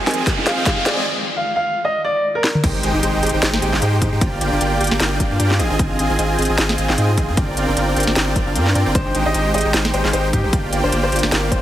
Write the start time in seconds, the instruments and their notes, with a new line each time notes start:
Already playing: ambient pad D#3 G#3 F4, riser
0.06 sub bass G#1, felt piano G#3 C4 D#4 F4 A#4, supersaw synth C4 F4 G#4 D#5 G#5, grand piano G#5, snare, closed hi-hat
0.11 closed hi-hat
0.14 closed hi-hat
0.18 sub bass G#1, supersaw synth C4 F4 G#4 D#5 G#5
0.26 sub bass G#1, supersaw synth C4 F4 G#4 D#5 G#5, kick, snare, closed hi-hat
0.37 felt piano G#3 C4 D#4 F4 G#4
0.46 sub bass G#1, supersaw synth C4 F4 G#4 D#5 G#5, grand piano F5, snare, closed hi-hat
0.57 sub bass G#1, supersaw synth C4 F4 G#4 D#5 G5
0.65 sub bass G#2, felt piano G#3 C4 D#4 F4 G4, supersaw synth C4 F4 G#4 D#5 G#5, kick, snare, closed hi-hat
0.86 sub bass G#2, supersaw synth C4 F4 G#4 D#5 G#5, grand piano D5, snare, closed hi-hat
0.97 sub bass G#1, supersaw synth C4 F4 G#4 D#5 G#5
1.37 grand piano F5
1.56 grand piano F5
1.85 grand piano D#5
2.05 grand piano D5
2.35 grand piano A#4
2.44 snare
2.55 mid tom
2.64 sub bass G#1, supersaw synth G#3 D#4 G4 C5 G5, harp D#4, kick, closed hi-hat, crash, impact
2.75 harp G5
2.83 sub bass G#1, supersaw synth G#3 D#4 G4 C5 G5, harp G#5, closed hi-hat
2.94 sub bass G#1, supersaw synth G#3 D#4 G4 C5 G5, harp D#4
3.03 sub bass G#1, supersaw synth G#3 D#4 G4 C5 G5, harp D#5, closed hi-hat
3.14 harp C5
3.23 sub bass G#1, supersaw synth G#3 D#4 G4 C5 G5, harp G#4, closed hi-hat
3.26 closed hi-hat
3.29 closed hi-hat
3.34 sub bass G#1, supersaw synth G#3 D#4 G4 C5 G5, harp D#4
3.42 sub bass G#1, supersaw synth G#3 D#4 G4 C5 G5, harp G#4, snare, closed hi-hat
3.54 harp G5, snare
3.62 sub bass G#1, supersaw synth G#3 D#4 G4 C5 G5, harp G#5, closed hi-hat
3.73 sub bass G#1, supersaw synth G#3 D#4 G4 C5 F5, harp D#4, snare
3.82 sub bass G#2, supersaw synth G#3 D#4 G4 C5 G5, harp C5, closed hi-hat
3.93 harp G4
4.02 sub bass G#2, supersaw synth G#3 D#4 G4 C5 G5, harp D#4, kick, closed hi-hat
4.12 sub bass G#2, supersaw synth G#3 D#4 G4 C5 G5, harp D#4
4.21 sub bass G1, supersaw synth A#3 F4 G4 D5 G5, harp D4, kick, closed hi-hat
4.32 harp F5
4.41 sub bass G1, supersaw synth A#3 F4 G4 D5 G5, harp G5, closed hi-hat
4.52 sub bass G1, supersaw synth A#3 F4 G4 D5 G5, harp D4
4.61 sub bass G1, supersaw synth A#3 F4 G4 D5 G5, harp D5, closed hi-hat
4.71 harp A#4
4.80 sub bass G1, supersaw synth A#3 F4 G4 D5 G5, harp G4, closed hi-hat
4.84 closed hi-hat
4.87 closed hi-hat
4.91 sub bass G1, supersaw synth A#3 F4 G4 D5 G5, harp D4, snare
5.00 sub bass G1, supersaw synth A#3 F4 G4 D5 G5, snare, closed hi-hat
5.11 harp F5
5.20 sub bass G1, supersaw synth A#3 F4 G4 D5 G5, harp G5, kick, closed hi-hat
5.31 sub bass G2, supersaw synth A#3 F4 G4 D5 F5, harp D4
5.40 sub bass G2, supersaw synth A#3 F4 G4 D5 G5, harp A#4, closed hi-hat
5.51 harp F4, snare
5.59 sub bass G#1, supersaw synth C4 F4 G#4 D#5 G#5, harp D#4, closed hi-hat
5.70 sub bass G#1, supersaw synth C4 F4 G#4 D#5 G#5, harp D#4
5.79 sub bass G#1, supersaw synth C4 G#4 D#5, harp D#4, kick, closed hi-hat
5.90 harp F5
5.99 sub bass G#1, supersaw synth C4 F4 G#4 D#5 G#5, harp G#5, closed hi-hat
6.10 sub bass G#1, supersaw synth C4 F4 G#4 D#5 G#5, harp D#4
6.19 sub bass G#1, supersaw synth C4 F4 G#4 D#5 G#5, harp D#5, closed hi-hat
6.30 harp C5
6.38 sub bass G#1, supersaw synth C4 F4 G#4 D#5 G#5, harp G#4, closed hi-hat
6.42 closed hi-hat
6.45 closed hi-hat
6.49 sub bass G#1, supersaw synth C4 F4 G#4 D#5 G#5, harp D#4
6.58 sub bass G#1, supersaw synth C4 F4, harp G#4, snare, closed hi-hat
6.69 harp F5, snare
6.78 sub bass G#1, supersaw synth C4 F4 G#4 D#5 G#5, harp G#5, closed hi-hat
6.89 sub bass G#1, supersaw synth C4 F4 G#4 D#5 G5, harp D#4, snare
6.98 sub bass G#2, supersaw synth C4 F4 G#4 D#5 G#5, harp C5, closed hi-hat
7.09 harp F4
7.17 sub bass G#1, supersaw synth C4 F4 G#4 D#5 G#5, harp D#4, kick, closed hi-hat
7.28 sub bass G#2, supersaw synth C4 F4 G#4 D#5 G#5, harp D#4
7.37 sub bass G1, supersaw synth C4 F4 A#4 D5 G5, harp D4, kick, closed hi-hat
7.48 harp D5
7.57 sub bass G1, supersaw synth C4 F4 A#4 D5 G5, harp F5, closed hi-hat
7.68 sub bass G1, supersaw synth C4 F4 A#4 D5 G5, harp D4
7.77 sub bass G1, supersaw synth C4 F4 A#4 D5 G5, harp C5, closed hi-hat
7.88 harp A#4
7.96 sub bass G1, supersaw synth C4 F4 A#4 D5 G5, harp G4, closed hi-hat
8.00 closed hi-hat
8.03 closed hi-hat
8.07 sub bass G1, supersaw synth C4 F4 A#4 D5 G5, harp D4, snare
8.16 sub bass G1, supersaw synth C4 F4 A#4 D5 G5, harp G4, snare, closed hi-hat
8.27 harp D5
8.36 sub bass G1, supersaw synth C4 F4 A#4 D5 G5, harp F5, kick, closed hi-hat
8.47 sub bass G1, supersaw synth C4 F4 A#4 D5 F5, harp D4
8.55 sub bass G2, supersaw synth C4 F4 A#4 D5 G5, harp A#4, closed hi-hat
8.67 harp F4, snare
8.75 sub bass G2, supersaw synth C4 F4 A#4 D5 G5, harp D4, closed hi-hat
8.86 sub bass G1, supersaw synth C4 F4 A#4 D5 G5, harp D4
8.95 sub bass G#1, supersaw synth G#3 D#4 G4 C5 G5, harp D#4, grand piano C5, kick, closed hi-hat
9.06 harp G5
9.14 sub bass G#1, supersaw synth G#3 D#4 G4 C5 G5, harp G#5, closed hi-hat
9.26 sub bass G#1, supersaw synth G#3 D#4 G4 C5 G5, harp D#4, grand piano D#5
9.34 sub bass G#1, supersaw synth G#3 D#4 G4 C5 G5, harp D#5, closed hi-hat
9.46 harp C5
9.54 sub bass G#1, supersaw synth G#3 D#4 G4 C5 G5, harp G#4, grand piano D#5, closed hi-hat
9.58 closed hi-hat
9.61 closed hi-hat
9.65 sub bass G#1, supersaw synth G#3 D#4 G4 C5 G5, harp D#4
9.74 sub bass G#1, supersaw synth G#3 D#4 G4 C5 G5, harp G#4, snare, closed hi-hat
9.85 harp G5, snare
9.94 sub bass G#1, supersaw synth G#3 D#4 G4 C5 G5, grand piano C5, harp G#5, closed hi-hat
10.05 sub bass G#1, supersaw synth G#3 D#4 G4 C5 F5, harp D#4, snare
10.13 sub bass G#1, supersaw synth G#3 D#4 G4 C5 G5, grand piano C5, harp C5, closed hi-hat
10.24 harp G4
10.33 sub bass G#2, supersaw synth G#3 D#4 G4 C5 G5, harp D#4, grand piano G4, kick, closed hi-hat
10.44 sub bass G#1, supersaw synth G#3 D#4 G4 C5 G5, harp D#4
10.53 sub bass G1, supersaw synth A#3 F4 G4 D5 G5, harp D4, kick, closed hi-hat
10.64 harp F5
10.72 sub bass G1, supersaw synth A#3 F4 G4 D5 G5, harp G5, closed hi-hat
10.84 sub bass G1, supersaw synth A#3 F4 G4 D5 G5, harp D4, grand piano C5
10.92 sub bass G1, supersaw synth A#3 F4 G4 D5 G5, harp D5, closed hi-hat
11.03 harp A#4, grand piano C5
11.12 sub bass G1, supersaw synth A#3 F4 G4 D5 G5, harp G4, closed hi-hat
11.16 closed hi-hat
11.19 closed hi-hat
11.23 sub bass G1, supersaw synth A#3 F4 G4 D5 G5, harp D4, snare
11.32 sub bass G1, supersaw synth A#3 F4 G4 D5 G5, harp G4, grand piano A#4, snare, closed hi-hat
11.43 harp F5
11.51 sub bass G1, supersaw synth A#3 F4 G4 D5 G5, grand piano C5, harp G5, kick, closed hi-hat